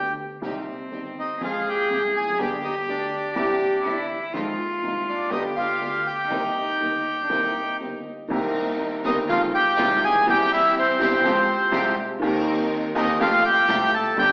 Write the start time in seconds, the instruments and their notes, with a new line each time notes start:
Already playing: upright piano D2 D3 G3 B3 G4, string section B3 D4 G4, bandoneon G4 G5
0.42 upright piano C2 C3 D#3 G3 C4 G4, string section C4 D#4 G4, cello C4
0.91 upright piano G1 G2 D#3 G3 C4 G4, string section C4 D#4 G4
1.19 bandoneon D#4 D#5
1.41 upright piano F2 F3 G#3 C4 G#4, string section C4 F4 G#4, bandoneon F4, cello G#4
1.45 bandoneon F5
1.69 bandoneon G4 G5
1.90 upright piano C2 C3 F3 G#3 C4 G#4, string section C4 F4 G#4, bandoneon G4 G5
2.16 upright piano E2, bandoneon G#4 G#5
2.26 upright piano F2
2.32 upright piano F#2
2.38 upright piano G1 G2 D3 G3 B3 G4, string section B3 D4 G4, cello G4, bandoneon G4 G5
2.64 bandoneon D#4 D#5
2.88 upright piano D2 D3 G3 B3 G4, string section B3 D4 G4, bandoneon D4 D5
3.35 upright piano C2 C3 E3 G3 C4 G4, string section C4 E4 G4, cello G4
3.84 upright piano G1 G2 E3 G3 C4 G4, string section C4 E4 G4, cello E4
4.33 upright piano F2 D#3 F3 G#3 C4 F4, string section G#3 D#4 F4, cello F4
4.82 upright piano C2 C3 D#3 G#3 C4 F4, string section G#3 D#4 F4
5.09 bandoneon D4 D5
5.29 upright piano G1 G2 D3 G3 B3 G4, string section B3 D4 G4, bandoneon D#4 D#5, cello G4
5.56 bandoneon F4 F5
5.79 upright piano D2 D3 G3 B3 G4, string section B3 D4 G4
6.07 bandoneon G4 G5
6.29 upright piano C2 C3 D#3 A#3 C4 G4, string section C4 D#4 A#4, cello D#4
6.79 upright piano G1 G2 D#3 A#3 C4 G4, string section C4 D#4 A#4
7.23 cello D4
7.30 upright piano C2 C3 D#3 A#3 C4 G4, string section C4 D#4 A#4, cello D#4
7.79 upright piano G1 G2 D#3 A#3 C4 G4, string section C4 D#4 A#4
8.28 upright piano C2 C3 D#3 A#3 C4, string section C4 D#4 A#4
8.33 upright piano G4
9.03 upright piano G1 G2 D#3 A#3 C4 G4, string section C4 D#4 A#4, bandoneon D#4 D#5
9.27 upright piano F2 D#3 F3 G#3 C4 F4, string section G#3 D#4 F4, bandoneon F5
9.31 bandoneon F4
9.54 bandoneon G4 G5
9.76 upright piano C2 C3 D#3 G#3 C4 F4, string section G#3 D#4 F4
10.04 bandoneon G#4 G#5
10.09 upright piano A1
10.15 upright piano A#1
10.21 upright piano B1, string section C4
10.26 upright piano C2 C3 E3 G3 C4 G4, string section E4 G4, bandoneon G4
10.30 bandoneon G5
10.53 bandoneon E4 E5
10.79 bandoneon C4 C5
10.99 upright piano G1 G2 E3 G3 C4 G4, string section C4 E4 G4
11.24 upright piano F2 F3 G#3 C4 G4, string section G#3 F4 G4
11.72 upright piano C2 C3 F3 G#3 C4 G4, string section G#3 F4 G4
12.20 upright piano D#2 D#3 A#3 C4, string section D#3 C4 D#4 A#4
12.24 upright piano G4
12.95 upright piano D#2 D#3 A#3 C4 G4, string section D#3 C4 D#4 A#4, bandoneon D#4 D#5
13.20 upright piano F2 F3 A3 C4 G4, string section A3 F4 G4, bandoneon F4 F5
13.44 bandoneon G4 G5
13.68 upright piano C2 C3 F3 A3 C4 G4, string section A3 F4 G4
13.94 bandoneon A4 A5
14.16 upright piano G1 G2 D3 G3 C4 G4, string section C4 D4 G4, bandoneon G5
14.21 bandoneon G4